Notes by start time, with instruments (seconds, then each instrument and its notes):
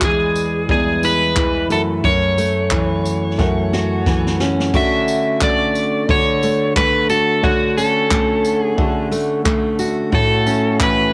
Already playing: steel-string acoustic guitar E2 G#3, grand piano G#3 E4 D5
0.01 steel-string acoustic guitar E3, electric slide guitar G#4, kick, clap
0.36 tambourine
0.68 steel-string acoustic guitar E2, grand piano G3 E4 D5, electric slide guitar G#4, kick
0.75 grand piano G#3
1.03 steel-string acoustic guitar E4, electric slide guitar B4, tambourine
1.36 steel-string acoustic guitar E3, kick, clap
1.69 steel-string acoustic guitar F#2, grand piano A3 F#4 E5, electric slide guitar A4, tambourine
2.04 steel-string acoustic guitar F#2, electric slide guitar C#5, kick
2.38 steel-string acoustic guitar A3, tambourine
2.71 steel-string acoustic guitar E3, kick, clap
3.06 tambourine
3.38 steel-string acoustic guitar F#2, grand piano A3 F#4 F#5, kick, snare
3.73 steel-string acoustic guitar F#4, snare
4.06 steel-string acoustic guitar E3, kick, snare
4.27 snare
4.40 steel-string acoustic guitar C#4, snare
4.60 snare
4.73 steel-string acoustic guitar D3 F#4, grand piano A3 D4 F#4 C#6, electric slide guitar E5, kick, crash
5.08 tambourine
5.41 steel-string acoustic guitar A3, electric slide guitar D5, kick, clap
5.75 tambourine
6.08 steel-string acoustic guitar D3, grand piano A3 D4 F#4 C#5, electric slide guitar C#5, kick
6.43 steel-string acoustic guitar A3, tambourine
6.76 steel-string acoustic guitar A3, electric slide guitar B4, kick, clap
7.10 steel-string acoustic guitar F#4, electric slide guitar A4, tambourine
7.42 steel-string acoustic guitar D3 F#4, grand piano A3 D4 F#4 C#5, electric slide guitar F#4, kick
7.77 steel-string acoustic guitar C#4, electric slide guitar A4, tambourine
8.11 steel-string acoustic guitar A3, kick, clap
8.45 tambourine
8.62 electric slide guitar G#4
8.76 steel-string acoustic guitar D3, grand piano A3 D4 F#4 A4, kick
9.12 steel-string acoustic guitar A3, tambourine
9.45 steel-string acoustic guitar A3, kick, clap
9.79 steel-string acoustic guitar F#4, tambourine
10.12 steel-string acoustic guitar A2 F#4, grand piano A3 E4 F#4 C#5, electric slide guitar A4, kick
10.46 steel-string acoustic guitar C#4, tambourine
10.80 steel-string acoustic guitar E3, electric slide guitar B4, kick, clap